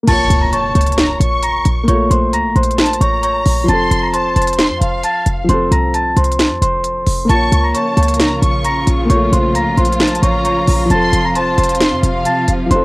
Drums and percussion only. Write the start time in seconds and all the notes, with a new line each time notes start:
0.08 closed hi-hat, crash
0.30 closed hi-hat
0.53 closed hi-hat
0.75 closed hi-hat
0.81 closed hi-hat
0.86 closed hi-hat
0.92 closed hi-hat
0.98 snare, closed hi-hat
1.21 closed hi-hat
1.43 closed hi-hat
1.65 closed hi-hat
1.88 closed hi-hat
2.11 closed hi-hat
2.33 closed hi-hat
2.56 closed hi-hat
2.63 closed hi-hat
2.71 closed hi-hat
2.78 snare, closed hi-hat
2.86 closed hi-hat
2.93 closed hi-hat
3.01 closed hi-hat
3.23 closed hi-hat
3.46 open hi-hat
3.68 closed hi-hat
3.91 closed hi-hat
4.14 closed hi-hat
4.36 closed hi-hat
4.42 closed hi-hat
4.47 closed hi-hat
4.53 closed hi-hat
4.59 snare, closed hi-hat
4.82 closed hi-hat
5.04 closed hi-hat
5.26 closed hi-hat
5.49 closed hi-hat
5.72 closed hi-hat
5.94 closed hi-hat
6.17 closed hi-hat
6.24 closed hi-hat
6.32 closed hi-hat
6.39 snare, closed hi-hat
6.62 closed hi-hat
6.84 closed hi-hat
7.07 open hi-hat
7.29 closed hi-hat
7.52 closed hi-hat
7.75 closed hi-hat
7.97 closed hi-hat
8.03 closed hi-hat
8.08 closed hi-hat
8.14 closed hi-hat
8.20 snare, closed hi-hat
8.43 closed hi-hat
8.64 closed hi-hat
8.87 closed hi-hat
9.10 closed hi-hat
9.33 closed hi-hat
9.55 closed hi-hat
9.77 closed hi-hat
9.85 closed hi-hat
9.92 closed hi-hat
10.00 snare, closed hi-hat
10.08 closed hi-hat
10.15 closed hi-hat
10.23 closed hi-hat
10.45 closed hi-hat
10.67 open hi-hat
10.90 closed hi-hat
11.13 closed hi-hat
11.35 closed hi-hat
11.58 closed hi-hat
11.64 closed hi-hat
11.69 closed hi-hat
11.75 closed hi-hat
11.80 snare, closed hi-hat
12.03 closed hi-hat
12.25 closed hi-hat
12.48 closed hi-hat
12.71 closed hi-hat